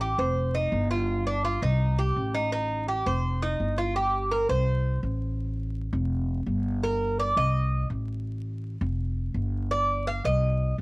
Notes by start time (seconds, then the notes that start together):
Already playing: A1
0.01 G4
0.18 F1 C5
0.55 D#4
0.72 G1
0.91 F4
1.27 D4
1.45 F4
1.62 C2 D#4
1.99 G4
2.16 A1
2.35 D#4
2.52 D#4
2.88 G4
3.06 F1 C5
3.42 D#4
3.60 G1
3.78 F4
3.96 G4
4.31 A#4
4.49 C2 C5
5.03 A1
5.93 F1
6.46 G1
6.83 A#4
7.19 D5
7.36 C2 D#5
7.90 A1
8.81 F1
9.34 G1
9.71 D5
10.07 F5
10.24 C2 D#5
10.78 A1